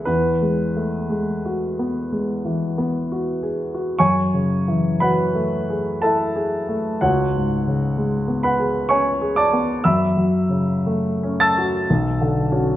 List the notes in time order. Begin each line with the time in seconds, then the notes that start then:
0.05 E2 B4
0.42 G#3
0.76 A3
1.10 G#3
1.46 F#4
1.79 B3
2.12 G#3
2.45 E3
2.78 B3
3.12 F#4
3.43 G#4
3.74 F#4
3.99 F#2 C#5 G#5 C#6
4.34 C#3
4.68 E3
5.00 F#3 B4 F#5 B5
5.35 A3
5.70 G#4
6.02 E4 A4 E5 A5
6.36 G#4
6.69 A3
7.01 C#2 F#4 C#5 F#5
7.35 G#2
7.67 C#3
7.97 G#3
8.28 B3
8.43 B4 F#5 B5
8.59 G#4
8.89 C#4 C#5 G#5 C#6
9.21 G#4
9.36 D5 A5 D6
9.53 B3
9.84 F#2 E5 B5 E6
10.17 F#3
10.49 C#3
10.87 A3
11.23 C#4
11.40 A5 E6 A6
11.58 F#4
11.90 B1
12.21 D3
12.52 C#4 F#4